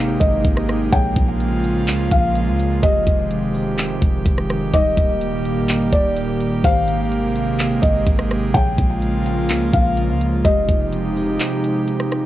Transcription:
0.00 0.17 G#1 loud
0.00 0.91 C3 medium
0.00 4.70 G#3 medium
0.00 2.79 A#3 medium
0.00 0.89 D#4 medium
0.00 0.89 G4 medium
0.00 0.91 G4 medium
0.00 0.91 C5 medium
0.00 0.17 F5 loud
0.00 downlifter medium
0.20 0.44 G#1 loud
0.20 0.43 D#5 medium
0.20 kick loud
0.20 closed hi-hat medium
0.45 0.91 G#1 loud
0.45 kick loud
0.45 closed hi-hat medium
0.57 cross-stick loud
0.69 cross-stick medium
0.69 closed hi-hat medium
0.93 1.16 A#1 loud
0.93 2.81 C#3 medium
0.93 4.70 F3 medium
0.93 2.81 F4 medium
0.93 2.81 G#4 medium
0.93 2.81 C#5 medium
0.93 2.08 G5 loud
0.93 kick loud
0.93 closed hi-hat medium
1.16 1.90 A#1 loud
1.16 kick loud
1.16 closed hi-hat medium
1.40 closed hi-hat medium
1.64 closed hi-hat medium
1.88 2.11 C#2 loud
1.88 clap loud
1.88 closed hi-hat medium
2.12 2.49 A#1 loud
2.12 2.34 F5 medium
2.12 kick loud
2.12 closed hi-hat medium
2.36 closed hi-hat medium
2.47 2.81 C#2 loud
2.60 closed hi-hat medium
2.83 3.06 F1 loud
2.83 4.72 C3 medium
2.83 8.50 D#3 medium
2.83 4.72 G#3 medium
2.83 8.51 G4 loud
2.83 4.72 G4 medium
2.83 4.22 D#5 loud
2.83 4.72 D#5 medium
2.83 kick loud
2.83 closed hi-hat medium
3.07 3.98 F1 loud
3.07 kick loud
3.07 closed hi-hat medium
3.31 closed hi-hat medium
3.55 open hi-hat medium
3.78 clap loud
3.78 closed hi-hat medium
4.02 4.25 F1 loud
4.02 kick loud
4.02 closed hi-hat medium
4.26 4.72 F1 loud
4.26 kick loud
4.26 closed hi-hat medium
4.38 cross-stick medium
4.50 cross-stick loud
4.50 closed hi-hat medium
4.73 4.96 D#1 loud
4.73 6.62 A#2 medium
4.73 6.62 G3 medium
4.73 6.62 A#3 medium
4.73 6.62 D#4 medium
4.73 5.89 D#5 loud
4.73 6.62 D6 medium
4.73 kick loud
4.73 closed hi-hat medium
4.97 5.58 D#1 loud
4.97 kick loud
4.97 closed hi-hat medium
5.21 closed hi-hat medium
5.45 closed hi-hat medium
5.57 5.91 G1 loud
5.69 clap loud
5.69 closed hi-hat medium
5.92 6.61 D#1 loud
5.92 6.15 D5 medium
5.92 kick loud
5.92 closed hi-hat medium
6.17 closed hi-hat medium
6.40 closed hi-hat medium
6.64 7.79 G#1 loud
6.64 8.53 C3 medium
6.64 10.41 G#3 medium
6.64 8.53 A#3 medium
6.64 10.41 A#3 medium
6.64 8.53 G4 medium
6.64 8.53 C5 medium
6.64 7.79 F5 loud
6.64 kick loud
6.64 closed hi-hat medium
6.88 closed hi-hat medium
7.12 closed hi-hat medium
7.36 closed hi-hat medium
7.59 clap loud
7.59 closed hi-hat medium
7.82 8.06 G#1 loud
7.82 8.05 D#5 medium
7.82 kick loud
7.82 closed hi-hat medium
8.07 8.53 G#1 loud
8.07 kick medium
8.07 closed hi-hat medium
8.19 cross-stick loud
8.31 cross-stick loud
8.31 closed hi-hat medium
8.54 8.77 A#1 loud
8.54 10.43 C#3 medium
8.54 12.26 F3 medium
8.54 10.43 A#3 medium
8.54 10.43 F4 medium
8.54 10.43 G#4 medium
8.54 10.43 C#5 medium
8.54 9.69 G5 loud
8.54 kick loud
8.54 closed hi-hat medium
8.78 9.51 A#1 loud
8.78 kick loud
8.78 closed hi-hat medium
9.02 closed hi-hat medium
9.26 closed hi-hat medium
9.50 9.72 C#2 loud
9.50 clap loud
9.50 closed hi-hat medium
9.73 10.11 A#1 loud
9.73 9.96 F5 medium
9.73 kick loud
9.73 closed hi-hat medium
9.97 closed hi-hat medium
10.09 10.43 C#2 loud
10.21 closed hi-hat medium
10.45 10.68 F1 loud
10.45 12.26 C3 medium
10.45 12.26 G#3 medium
10.45 12.26 D#4 medium
10.45 12.26 G4 medium
10.45 11.84 D#5 loud
10.45 12.26 D#5 medium
10.45 kick loud
10.45 closed hi-hat medium
10.69 11.37 F1 loud
10.69 kick loud
10.69 closed hi-hat medium
10.93 closed hi-hat medium
11.17 open hi-hat medium
11.40 clap loud
11.40 closed hi-hat medium
11.64 closed hi-hat medium
11.88 closed hi-hat medium
12.00 cross-stick loud
12.12 cross-stick medium
12.12 closed hi-hat medium

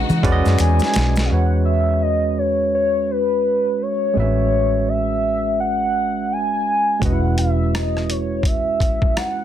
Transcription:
0.00 1.28 C#3 medium
0.00 0.23 G#3 medium
0.00 1.27 G#3 medium
0.00 0.23 C#4 medium
0.00 1.28 D#4 medium
0.00 0.24 F#4 medium
0.00 1.28 F#4 medium
0.00 0.25 B4 medium
0.00 0.32 D#5 medium
0.00 0.60 F#5 loud
0.10 0.22 E3 medium
0.10 maracas soft
0.23 0.43 E2 medium
0.23 1.07 G#3 medium
0.23 1.07 C#4 medium
0.23 1.08 F#4 medium
0.23 1.08 B4 medium
0.23 0.32 D5 medium
0.23 kick medium
0.23 closed hi-hat medium
0.32 1.12 D#5 loud
0.45 0.58 F#2 medium
0.45 snare soft
0.45 maracas soft
0.59 0.79 E2 medium
0.59 1.27 G#5 loud
0.59 finger snap medium
0.59 closed hi-hat medium
0.59 maracas medium
0.79 snare medium
0.79 maracas soft
0.94 1.28 B1 medium
0.94 snare medium
0.94 closed hi-hat medium
0.94 maracas soft
1.16 snare medium
1.16 maracas soft
1.25 4.11 G#3 soft
1.25 4.11 C#4 soft
1.25 1.32 F5 medium
1.31 4.13 E2 medium
1.31 4.12 F#4 soft
1.31 4.13 B4 soft
1.31 4.14 C#5 medium
1.31 1.65 F#5 loud
1.65 2.04 E5 medium
2.02 2.40 D#5 medium
2.38 2.74 C#5 medium
2.75 3.12 C#5 medium
3.11 3.83 B4 medium
3.82 4.90 C#5 medium
4.14 6.98 A1 medium
4.14 6.96 G#3 medium
4.14 4.23 C4 soft
4.14 6.98 F#4 soft
4.18 7.00 C#4 soft
4.18 6.99 B4 soft
4.18 7.00 E5 medium
4.89 5.59 E5 loud
5.60 6.34 F#5 loud
6.32 7.05 G#5 loud
7.00 9.45 E1 medium
7.00 9.45 G#3 medium
7.00 9.45 C#4 soft
7.00 9.45 F#4 soft
7.00 7.40 F#5 loud
7.00 kick loud
7.00 closed hi-hat medium
7.05 9.45 B4 soft
7.05 7.12 D#5 soft
7.12 9.45 E4 medium
7.38 7.76 E5 medium
7.38 closed hi-hat medium
7.74 8.12 D#5 medium
7.74 cross-stick medium
7.74 closed hi-hat medium
7.97 cross-stick soft
8.10 8.48 C#5 medium
8.10 closed hi-hat medium
8.43 9.18 E5 medium
8.43 kick medium
8.43 closed hi-hat medium
8.80 kick medium
8.80 closed hi-hat medium
9.02 kick medium
9.17 9.45 F#5 medium
9.17 cross-stick medium
9.17 closed hi-hat medium

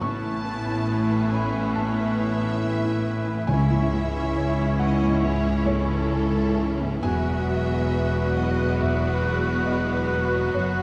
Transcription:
0.01 3.45 A1 medium
0.01 1.71 A2 medium
0.01 3.45 A2 medium
0.01 3.44 B3 medium
0.01 3.45 B3 medium
0.01 3.44 C#4 medium
0.01 3.45 E4 medium
0.01 3.51 B4 medium
0.01 1.28 A5 loud
0.01 1.28 C#6 loud
0.01 3.23 C#6 medium
0.24 0.59 E3 soft
0.46 0.81 B3 medium
0.67 1.02 E4 medium
0.88 1.23 B4 medium
1.12 1.46 E4 medium
1.30 1.67 B3 medium
1.30 1.75 G#5 medium
1.30 1.73 B5 loud
1.54 1.89 E3 medium
1.74 3.45 A2 medium
1.74 3.48 E5 loud
1.74 3.45 A5 loud
1.98 2.32 B3 medium
2.20 2.54 E3 medium
2.42 2.76 E4 medium
2.63 2.97 B4 medium
2.84 3.18 E4 medium
3.05 3.40 B3 medium
3.27 3.49 E3 medium
3.47 5.19 C#2 medium
3.47 6.99 C#2 medium
3.47 4.76 C#3 loud
3.47 6.99 E3 medium
3.47 6.99 C#4 medium
3.47 6.86 C#4 medium
3.47 6.99 E4 medium
3.47 6.86 E4 medium
3.47 6.70 E4 medium
3.47 6.75 C#5 medium
3.47 4.78 E5 loud
3.47 4.75 G#5 loud
3.47 6.70 C#6 medium
3.71 4.06 G#2 medium
3.94 4.28 G#3 medium
4.16 4.50 E4 medium
4.37 4.71 C#5 medium
4.58 4.93 E4 medium
4.79 5.15 G#3 medium
4.79 5.23 D#5 medium
4.79 5.20 F#5 loud
5.03 5.37 G#2 medium
5.22 6.99 C#2 medium
5.22 5.66 C#5 loud
5.22 5.63 E5 loud
5.46 5.81 G#3 medium
5.66 6.02 G#2 medium
5.66 7.03 A4 loud
5.66 6.09 C#5 loud
5.89 6.25 E4 medium
6.11 6.48 C#5 medium
6.34 6.71 E4 medium
6.57 6.94 E3 medium
6.81 7.04 G#2 medium
7.02 10.52 E1 medium
7.02 10.52 E2 medium
7.02 8.76 E2 medium
7.02 10.82 F#3 medium
7.02 8.75 B3 medium
7.02 10.82 B3 medium
7.02 8.75 F#4 medium
7.02 10.82 F#4 medium
7.02 10.82 B4 medium
7.02 8.32 E5 loud
7.02 8.32 G#5 loud
7.06 10.82 F#6 medium
7.26 7.61 B2 medium
7.49 7.84 F#3 medium
7.71 8.06 F#4 medium
7.94 8.28 B4 medium
8.16 8.50 F#4 medium
8.35 8.72 F#3 medium
8.35 8.79 D#5 medium
8.35 8.77 F#5 loud
8.60 8.94 B2 medium
8.79 10.52 E2 medium
8.79 10.53 B3 medium
8.79 10.53 F#4 medium
8.79 9.65 B4 loud
8.79 9.63 E5 loud
9.03 9.37 F#3 medium
9.25 9.59 B2 medium
9.47 9.81 F#4 medium
9.65 10.53 B4 loud
9.65 10.03 B4 medium
9.65 10.51 D#5 loud
9.91 10.26 F#4 medium
10.13 10.47 F#3 medium
10.34 10.56 B2 medium
10.54 10.82 F#1 medium
10.54 10.82 F#2 medium
10.54 10.82 B3 medium
10.54 10.82 F#4 loud
10.54 10.82 F#4 medium
10.54 10.82 C#5 loud

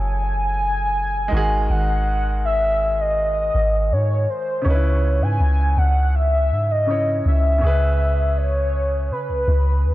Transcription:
0.00 1.28 F#1 loud
0.00 1.26 F#3 medium
0.00 1.28 E4 medium
0.00 1.29 G#4 medium
0.00 1.31 A4 medium
0.00 1.72 G#5 loud
1.28 4.24 D#3 medium
1.28 4.23 G#3 medium
1.32 1.68 G#1 loud
1.32 4.25 F#4 medium
1.37 4.27 G#4 medium
1.70 3.51 G#1 loud
1.70 2.44 F#5 loud
2.45 3.02 E5 loud
3.01 3.94 D#5 loud
3.54 3.93 G#1 loud
3.91 4.27 G#2 loud
3.91 4.31 C#5 medium
4.30 4.68 C5 medium
4.62 6.82 C#3 medium
4.62 6.83 C#4 medium
4.66 5.23 C#2 loud
4.66 4.73 D#4 medium
4.66 5.24 C#5 loud
4.70 6.87 E4 medium
4.70 6.86 B4 medium
5.21 5.39 G#2 loud
5.21 5.79 G#5 loud
5.40 5.76 C#2 loud
5.77 6.53 C#2 loud
5.77 6.17 F#5 loud
6.15 6.73 E5 loud
6.51 7.21 G#2 loud
6.71 7.26 D#5 loud
6.86 7.57 C#3 medium
6.86 7.60 C#4 soft
6.86 7.62 E4 soft
6.90 7.63 C#5 medium
7.26 7.61 C#2 loud
7.26 8.39 E5 loud
7.58 9.94 C#3 medium
7.58 9.94 C#4 medium
7.63 9.12 C#2 loud
7.63 9.94 G#4 medium
7.63 9.94 B4 medium
8.38 9.11 C#5 loud
9.11 9.31 C#3 medium
9.11 9.94 B4 loud
9.29 9.47 C#2 loud
9.48 9.86 C#2 loud
9.85 9.94 D#2 loud

